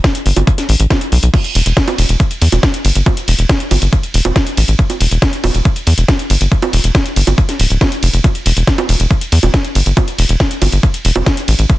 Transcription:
0.04 kick, snare, closed hi-hat
0.15 closed hi-hat
0.26 analog synth bass G1, open hi-hat
0.36 analog synth bass G1, closed hi-hat, high bongo
0.47 kick, closed hi-hat
0.58 snare, closed hi-hat
0.69 analog synth bass A1, open hi-hat
0.80 analog synth bass A1, closed hi-hat
0.90 kick, snare, closed hi-hat, high bongo
1.01 closed hi-hat
1.12 analog synth bass B1, open hi-hat
1.23 analog synth bass B1, closed hi-hat
1.34 kick, closed hi-hat, crash, high bongo
1.44 closed hi-hat
1.55 analog synth bass E1, open hi-hat, ride
1.66 analog synth bass E1, closed hi-hat
1.77 kick, snare, closed hi-hat
1.88 closed hi-hat, high bongo
1.98 analog synth bass E1, open hi-hat, ride
2.09 analog synth bass E1, closed hi-hat
2.20 kick, closed hi-hat
2.31 closed hi-hat
2.42 analog synth bass E2, open hi-hat, ride
2.52 analog synth bass E1, closed hi-hat, high bongo
2.63 kick, snare, closed hi-hat
2.74 closed hi-hat
2.85 analog synth bass G1, open hi-hat, ride
2.95 analog synth bass G1, closed hi-hat
3.06 kick, closed hi-hat, high bongo
3.17 closed hi-hat
3.28 analog synth bass E1, open hi-hat, ride
3.39 analog synth bass E1, closed hi-hat
3.49 kick, snare, closed hi-hat
3.60 closed hi-hat
3.71 analog synth bass G1, open hi-hat, ride, high bongo
3.82 analog synth bass G1, closed hi-hat
3.93 kick, closed hi-hat
4.03 closed hi-hat
4.14 analog synth bass E1, open hi-hat, ride
4.25 analog synth bass E1, closed hi-hat, high bongo
4.36 kick, snare, closed hi-hat
4.47 closed hi-hat
4.57 analog synth bass A1, open hi-hat, ride
4.68 analog synth bass A1, closed hi-hat
4.79 kick, closed hi-hat
4.90 closed hi-hat, high bongo
5.00 analog synth bass E1, open hi-hat, ride
5.11 analog synth bass E1, closed hi-hat
5.22 kick, snare, closed hi-hat
5.33 closed hi-hat
5.44 analog synth bass E1, open hi-hat, ride, high bongo
5.54 analog synth bass E1, closed hi-hat
5.65 kick, closed hi-hat
5.76 closed hi-hat
5.87 analog synth bass E2, open hi-hat, ride
5.98 analog synth bass E1, closed hi-hat
6.08 kick, snare, closed hi-hat, high bongo
6.19 closed hi-hat
6.30 analog synth bass G1, open hi-hat, ride
6.41 analog synth bass G1, closed hi-hat
6.52 kick, closed hi-hat
6.62 closed hi-hat, high bongo
6.73 analog synth bass E1, open hi-hat, ride
6.84 analog synth bass E1, closed hi-hat
6.95 kick, snare, closed hi-hat
7.06 closed hi-hat
7.16 analog synth bass G1, open hi-hat, ride
7.27 analog synth bass G1, closed hi-hat, high bongo
7.38 kick, closed hi-hat
7.49 snare, closed hi-hat
7.59 analog synth bass D1, open hi-hat, ride
7.70 analog synth bass D1, closed hi-hat
7.81 kick, snare, closed hi-hat, high bongo
7.92 closed hi-hat
8.03 analog synth bass F1, open hi-hat, ride
8.13 analog synth bass F1, closed hi-hat
8.24 kick, closed hi-hat, high bongo
8.35 closed hi-hat
8.46 analog synth bass E1, open hi-hat, ride
8.57 analog synth bass E1, closed hi-hat
8.67 kick, snare, closed hi-hat
8.78 closed hi-hat, high bongo
8.89 analog synth bass E1, open hi-hat, ride
9.00 analog synth bass E1, closed hi-hat
9.11 kick, closed hi-hat
9.21 closed hi-hat
9.32 analog synth bass E2, open hi-hat, ride
9.43 analog synth bass E1, closed hi-hat, high bongo
9.54 kick, snare, closed hi-hat
9.65 closed hi-hat
9.75 analog synth bass G1, open hi-hat, ride
9.86 analog synth bass G1, closed hi-hat
9.97 kick, closed hi-hat, high bongo
10.08 closed hi-hat
10.18 analog synth bass E1, open hi-hat, ride
10.29 analog synth bass E1, closed hi-hat
10.40 kick, snare, closed hi-hat
10.51 closed hi-hat
10.62 analog synth bass G1, open hi-hat, ride, high bongo
10.72 analog synth bass G1, closed hi-hat
10.83 kick, closed hi-hat
10.94 closed hi-hat
11.05 analog synth bass E1, open hi-hat, ride
11.16 analog synth bass E1, closed hi-hat, high bongo
11.26 kick, snare, closed hi-hat
11.37 closed hi-hat
11.48 analog synth bass A1, open hi-hat, ride
11.59 analog synth bass A1, closed hi-hat
11.70 kick, closed hi-hat

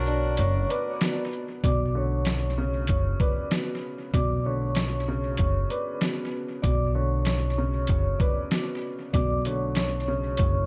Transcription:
Already playing: upright bass B1, upright piano B2 D3 B4, horn section D4 F#4 A#4, vibraphone C#5 C#6
0.06 upright piano D4, shaker
0.37 upright bass F#1, vibraphone C#5 C#6, closed hi-hat
0.69 upright piano B4, vibraphone D5 D6, closed hi-hat, shaker
1.01 upright piano B2, snare, closed hi-hat
1.33 shaker
1.64 upright bass B1, upright piano B2, vibraphone D5 D6, kick, closed hi-hat
1.95 upright piano D3, vibraphone C#5 C#6
2.25 snare, closed hi-hat
2.58 upright piano C#3
2.87 upright bass F#1, vibraphone C#5 C#6, kick, closed hi-hat
3.20 upright piano B4, vibraphone D5 D6, kick, closed hi-hat
3.51 upright piano B2, snare, closed hi-hat
4.13 upright bass B1, upright piano B2, vibraphone D5 D6, kick, closed hi-hat
4.45 upright piano D3, vibraphone C#5 C#6
4.75 snare, closed hi-hat
5.08 upright piano C#3
5.37 upright bass F#1, vibraphone C#5 C#6, kick, closed hi-hat
5.69 upright piano B4, vibraphone D5 D6, closed hi-hat
6.01 upright piano B2, snare, closed hi-hat
6.62 upright bass B1, upright piano B2, vibraphone D5 D6, kick, closed hi-hat
6.94 upright piano D3, vibraphone C#5 C#6
7.25 snare, closed hi-hat
7.58 upright piano C#3
7.87 upright bass F#1, vibraphone C#5, kick, closed hi-hat
7.92 vibraphone C#6
8.18 upright piano B4, vibraphone D5 D6, kick, closed hi-hat
8.51 upright piano B2, snare, closed hi-hat
9.13 upright bass B1, upright piano B2, vibraphone D5 D6, kick, closed hi-hat
9.45 upright piano D3, vibraphone C#5 C#6, closed hi-hat
9.75 snare, closed hi-hat
10.08 upright piano C#3
10.37 upright bass F#1, vibraphone C#5 C#6, kick, closed hi-hat

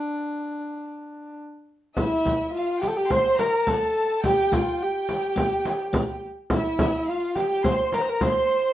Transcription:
Already playing: kamancheh D4
1.96 kamancheh E4, violin section E5, riq, frame drum
2.25 riq, frame drum
2.52 kamancheh F4, violin section F5
2.79 kamancheh G4, violin section G5, riq
2.83 frame drum
2.87 kamancheh A4
2.97 kamancheh G4, riq
3.07 kamancheh C5, violin section C6, riq, frame drum
3.37 kamancheh A#4, violin section A#5, riq, frame drum
3.64 kamancheh A4, violin section A5, riq, frame drum
4.22 kamancheh G4, violin section G5, riq, frame drum
4.52 kamancheh F4, riq, frame drum
4.80 kamancheh G4, violin section G5
5.09 riq, frame drum
5.22 riq
5.36 riq, frame drum
5.65 riq, frame drum
5.93 riq, frame drum
6.50 kamancheh E4, violin section E5, riq, frame drum
6.79 riq, frame drum
7.08 kamancheh F4, violin section F5
7.35 kamancheh G4, violin section G5, riq, frame drum
7.50 riq
7.64 kamancheh C5, violin section C6, riq, frame drum
7.92 kamancheh A#4, violin section A#5, riq, frame drum
8.01 kamancheh C5
8.09 kamancheh A#4
8.21 kamancheh C5, violin section C6, riq, frame drum

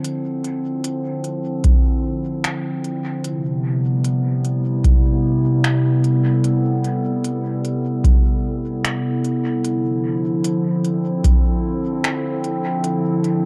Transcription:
Already playing: ambient pad D3 F3 C4 E4 A4
0.04 closed hi-hat
0.44 closed hi-hat
0.84 closed hi-hat
1.24 closed hi-hat
1.64 kick, closed hi-hat
2.44 finger snap, closed hi-hat
2.84 closed hi-hat
3.24 ambient pad C3, closed hi-hat
3.44 ambient pad B3
3.49 ambient pad G3
4.04 closed hi-hat
4.43 ambient pad E4, closed hi-hat
4.84 kick, closed hi-hat
5.64 finger snap, closed hi-hat
5.92 ambient pad A4
6.04 closed hi-hat
6.44 closed hi-hat
6.84 closed hi-hat
7.24 closed hi-hat
7.65 closed hi-hat
8.04 kick, closed hi-hat
8.85 finger snap, closed hi-hat
9.24 closed hi-hat
9.64 ambient pad D3, closed hi-hat
9.72 ambient pad F3
10.44 closed hi-hat
10.64 ambient pad C4
10.85 closed hi-hat
11.24 kick, closed hi-hat
12.04 finger snap, closed hi-hat
12.44 closed hi-hat
12.84 closed hi-hat
13.24 closed hi-hat

